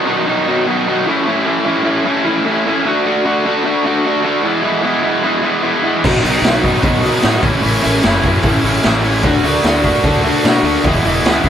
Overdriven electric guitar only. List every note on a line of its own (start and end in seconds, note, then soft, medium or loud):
0.06 0.26 B2 medium
0.06 0.26 D#3 medium
0.06 0.26 F#3 medium
0.06 0.27 B3 medium
0.06 0.28 D#4 loud
0.27 0.46 B2 medium
0.27 0.46 D#3 medium
0.27 0.47 F#3 medium
0.27 0.47 B3 medium
0.27 0.48 D#4 medium
0.47 0.65 B2 loud
0.47 0.66 D#3 medium
0.47 0.67 F#3 loud
0.47 0.67 B3 loud
0.47 0.68 D#4 loud
0.67 0.86 B2 medium
0.67 0.87 D#3 medium
0.67 0.88 F#3 medium
0.67 0.88 B3 medium
0.67 0.88 D#4 medium
0.87 1.06 B2 medium
0.87 1.06 D#3 medium
0.87 1.07 F#3 medium
0.87 1.07 B3 medium
0.87 1.07 D#4 medium
1.07 1.26 A2 medium
1.07 1.26 E3 loud
1.07 1.27 A3 loud
1.07 1.27 C#4 loud
1.07 1.28 E4 loud
1.27 1.45 A2 loud
1.27 1.45 E3 medium
1.27 1.46 A3 loud
1.27 1.47 C#4 loud
1.27 1.46 E4 loud
1.46 1.64 A2 medium
1.46 1.65 E3 loud
1.46 1.66 A3 loud
1.46 1.66 C#4 loud
1.46 1.66 E4 loud
1.65 1.82 A2 medium
1.65 1.82 E3 medium
1.65 1.85 A3 medium
1.65 1.83 C#4 loud
1.65 1.85 E4 loud
1.83 2.03 A2 medium
1.83 2.05 E3 medium
1.83 2.05 A3 medium
1.83 2.05 C#4 medium
1.83 2.05 E4 medium
2.04 2.23 A2 loud
2.04 2.24 E3 loud
2.04 2.24 A3 loud
2.04 2.24 C#4 loud
2.04 2.26 E4 loud
2.24 2.44 A2 medium
2.24 2.44 E3 medium
2.24 2.45 A3 medium
2.24 2.46 C#4 medium
2.24 2.47 E4 medium
2.45 2.65 A2 medium
2.45 2.65 E3 medium
2.45 2.66 A3 medium
2.45 2.67 C#4 medium
2.45 2.67 E4 loud
2.66 2.85 A2 medium
2.66 2.84 E3 medium
2.66 2.84 A3 loud
2.66 2.86 C#4 loud
2.66 2.86 E4 loud
2.85 3.05 D3 loud
2.85 3.05 A3 loud
2.85 3.05 D4 loud
2.85 3.06 F#4 loud
3.06 3.24 D3 medium
3.06 3.24 A3 medium
3.06 3.25 D4 loud
3.06 3.25 F#4 loud
3.25 3.44 D3 loud
3.25 3.45 A3 medium
3.25 3.45 D4 loud
3.25 3.45 F#4 loud
3.45 3.63 D3 medium
3.45 3.64 A3 medium
3.45 3.64 D4 loud
3.45 3.65 F#4 loud
3.65 3.83 D3 loud
3.65 3.84 A3 medium
3.65 3.84 D4 loud
3.65 3.85 F#4 loud
3.85 4.04 D3 medium
3.85 4.05 A3 loud
3.85 4.05 D4 medium
3.85 4.05 F#4 loud
4.06 4.22 D3 medium
4.06 4.23 A3 medium
4.06 4.23 D4 medium
4.06 4.24 F#4 loud
4.23 4.43 D3 medium
4.23 4.44 A3 medium
4.23 4.44 D4 medium
4.23 4.44 F#4 loud
4.43 4.62 E3 medium
4.43 4.63 G#3 loud
4.43 4.64 B3 loud
4.43 4.63 E4 loud
4.63 4.81 E3 medium
4.63 4.81 G#3 loud
4.63 4.84 B3 medium
4.63 4.83 E4 loud
4.82 5.02 E3 medium
4.82 5.02 G#3 medium
4.82 5.03 B3 loud
4.82 5.03 E4 loud
5.03 5.22 E3 medium
5.03 5.23 G#3 loud
5.03 5.22 B3 medium
5.03 5.24 E4 medium
5.23 5.42 E3 medium
5.23 5.43 G#3 loud
5.23 5.43 B3 loud
5.23 5.43 E4 loud
5.43 5.62 E3 medium
5.43 5.63 G#3 medium
5.43 5.63 B3 medium
5.43 5.63 E4 medium
5.63 5.82 E3 medium
5.63 5.83 G#3 medium
5.63 5.83 B3 medium
5.63 5.84 E4 medium
5.84 6.03 E3 medium
5.84 6.04 G#3 medium
5.84 6.03 B3 medium
5.84 6.04 E4 medium
6.04 6.21 B2 loud
6.04 6.22 D#3 loud
6.04 6.22 F#3 medium
6.04 6.23 B3 loud
6.04 6.23 D#4 loud
6.22 6.42 B2 medium
6.22 6.43 D#3 medium
6.22 6.43 F#3 medium
6.22 6.43 B3 medium
6.22 6.44 D#4 loud
6.43 6.60 B2 medium
6.43 6.62 D#3 medium
6.43 6.63 F#3 medium
6.43 6.63 B3 medium
6.43 6.62 D#4 medium
6.62 6.82 B2 medium
6.62 6.82 D#3 medium
6.62 6.82 F#3 medium
6.62 6.83 B3 loud
6.62 6.84 D#4 medium
6.83 7.03 B2 loud
6.83 7.04 D#3 loud
6.83 7.04 F#3 loud
6.83 7.05 B3 loud
6.83 7.05 D#4 loud
7.04 7.21 B2 medium
7.04 7.21 D#3 medium
7.04 7.22 F#3 medium
7.04 7.23 B3 medium
7.04 7.23 D#4 medium
7.22 7.41 B2 medium
7.22 7.42 D#3 medium
7.22 7.43 F#3 medium
7.22 7.43 B3 medium
7.22 7.43 D#4 medium
7.42 7.60 A2 medium
7.42 7.62 E3 loud
7.42 7.62 A3 loud
7.42 7.62 C#4 loud
7.42 7.63 E4 loud
7.62 7.81 A2 medium
7.62 7.81 E3 loud
7.62 7.84 A3 loud
7.62 7.83 C#4 loud
7.62 7.83 E4 loud
7.82 8.01 A2 loud
7.82 8.02 E3 loud
7.82 8.03 A3 medium
7.82 8.03 C#4 loud
7.82 8.03 E4 loud
8.02 8.22 A2 medium
8.02 8.23 E3 medium
8.02 8.24 A3 loud
8.02 8.24 C#4 loud
8.02 8.25 E4 loud
8.23 8.43 A2 medium
8.23 8.43 E3 medium
8.23 8.43 A3 medium
8.23 8.44 C#4 medium
8.23 8.45 E4 loud
8.44 8.63 A2 medium
8.44 8.63 E3 loud
8.44 8.63 A3 loud
8.44 8.64 C#4 loud
8.44 8.64 E4 loud
8.64 8.81 A2 medium
8.64 8.83 E3 medium
8.64 8.82 A3 medium
8.64 8.83 C#4 medium
8.64 8.83 E4 loud
8.82 9.01 A2 medium
8.82 9.02 E3 medium
8.82 9.03 A3 medium
8.82 9.03 C#4 medium
8.82 9.03 E4 medium
9.02 9.22 A2 medium
9.02 9.22 E3 medium
9.02 9.22 A3 medium
9.02 9.23 C#4 medium
9.02 9.23 E4 medium
9.22 9.43 D3 loud
9.22 9.43 A3 loud
9.22 9.44 D4 loud
9.22 9.45 F#4 loud
9.44 9.64 D3 medium
9.44 9.65 A3 loud
9.44 9.65 D4 loud
9.44 9.65 F#4 loud
9.65 9.83 D3 medium
9.65 9.83 A3 loud
9.65 9.83 D4 loud
9.65 9.84 F#4 medium
9.84 10.03 D3 medium
9.84 10.03 A3 loud
9.84 10.03 D4 medium
9.84 10.04 F#4 loud
10.04 10.22 D3 loud
10.04 10.22 A3 loud
10.04 10.23 D4 loud
10.04 10.23 F#4 loud
10.23 10.42 D3 medium
10.23 10.43 A3 medium
10.23 10.44 D4 loud
10.23 10.44 F#4 medium
10.43 10.62 D3 medium
10.43 10.64 A3 medium
10.43 10.64 D4 medium
10.43 10.64 F#4 loud
10.63 10.83 D3 medium
10.63 10.84 A3 medium
10.63 10.84 D4 loud
10.63 10.84 F#4 medium
10.86 11.03 E3 loud
10.86 11.04 G#3 loud
10.86 11.05 B3 medium
10.86 11.06 E4 loud
11.05 11.25 E3 medium
11.05 11.26 G#3 loud
11.05 11.26 B3 loud
11.05 11.27 E4 loud
11.26 11.44 E3 medium
11.26 11.44 G#3 medium
11.26 11.46 B3 loud
11.26 11.46 E4 loud
11.45 11.49 E3 medium
11.45 11.49 G#3 loud